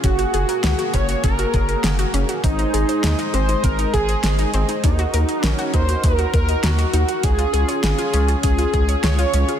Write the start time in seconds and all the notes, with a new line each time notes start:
0.03 F#1 A#3 C#4 F#4 G#4, kick, closed hi-hat
0.19 F#4, closed hi-hat
0.34 F#1 G#4, closed hi-hat
0.49 A#4, closed hi-hat
0.64 C#2 G#4, snare, closed hi-hat
0.79 F#4, closed hi-hat
0.94 F#1 C#4 C#5, kick, closed hi-hat
1.09 F#4, closed hi-hat
1.24 F#1 C#4 A#4, kick, closed hi-hat
1.39 F#4, closed hi-hat
1.54 F#1 G#4, kick, closed hi-hat
1.69 A#4, closed hi-hat
1.84 F#1 G#4, snare, closed hi-hat
1.99 F#4, closed hi-hat
2.14 F#1 C#4, closed hi-hat
2.29 F#4, closed hi-hat
2.43 G#1 G#3 C4 D#4 G#4 C5 D#5, kick, closed hi-hat
2.59 D#4, closed hi-hat
2.74 G#1 G#4, closed hi-hat
2.89 C5, closed hi-hat
3.04 D#2 G#4, snare, closed hi-hat
3.19 D#4, closed hi-hat
3.33 G#1 C4 C5, closed hi-hat
3.49 D#4, closed hi-hat
3.64 G#1 C4 A#4, kick, closed hi-hat
3.79 D#4, closed hi-hat
3.93 G#1 G#4, kick, closed hi-hat
4.09 C5, closed hi-hat
4.24 G#1 G#4, snare, closed hi-hat
4.39 D#4, closed hi-hat
4.54 G#1 C4, closed hi-hat
4.69 D#4, closed hi-hat
4.84 D#2 D#4 F#4 A#4, kick, closed hi-hat
4.99 F#4, closed hi-hat
5.14 D#2 A#4, closed hi-hat
5.29 D#5, closed hi-hat
5.44 A#1 C#4 A#4, snare, closed hi-hat
5.59 F#4, closed hi-hat
5.74 D#2 D#4 C5, kick, closed hi-hat
5.89 F#4, closed hi-hat
6.04 D#2 D#4 A#4, kick, closed hi-hat
6.19 F#4, closed hi-hat
6.34 D#2 A#4, kick, closed hi-hat
6.49 D#5, closed hi-hat
6.64 D#2 F#4 A#4, snare, closed hi-hat
6.79 F#4, closed hi-hat
6.93 D#2 D#4 F#4, closed hi-hat
7.09 F#4, closed hi-hat
7.23 C#2 C#4 F4 G#4, kick, closed hi-hat
7.38 F4, closed hi-hat
7.53 C#2 G#4, closed hi-hat
7.68 C#5, closed hi-hat
7.83 G#1 G#4, snare, closed hi-hat
7.98 F4, closed hi-hat
8.13 C#2 C#4, closed hi-hat
8.28 F4, closed hi-hat
8.43 C#2 C#4 G#4, kick, closed hi-hat
8.58 F4, closed hi-hat
8.73 C#2 G#4, kick, closed hi-hat
8.89 C#5, closed hi-hat
9.03 C#2 G#4 C#5, snare, closed hi-hat
9.19 F4, closed hi-hat
9.34 C#2 C#4, closed hi-hat
9.48 F4, closed hi-hat